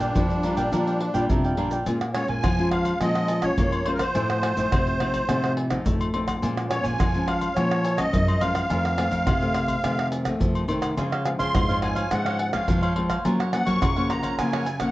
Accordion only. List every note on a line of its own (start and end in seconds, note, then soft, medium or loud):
0.00 1.25 D4 medium
2.14 2.28 C#5 medium
2.29 2.69 G#5 loud
2.72 2.99 F5 medium
3.01 3.45 D#5 loud
3.42 3.87 C#5 medium
3.86 3.92 C5 medium
3.93 4.00 A#4 medium
4.01 5.53 C5 loud
6.70 6.85 C#5 medium
6.84 7.28 G#5 loud
7.27 7.57 F5 medium
7.56 8.00 C#5 loud
7.97 8.42 D#5 loud
8.41 10.08 F5 loud
11.26 11.32 F5 medium
11.39 11.79 C6 loud
11.83 12.12 G#5 medium
12.12 12.51 F#5 loud
12.54 12.93 F5 medium
13.53 13.68 F#5 loud
13.66 14.11 C#6 loud
14.10 14.36 A#5 medium
14.39 14.79 G#5 medium
14.80 14.91 F#5 medium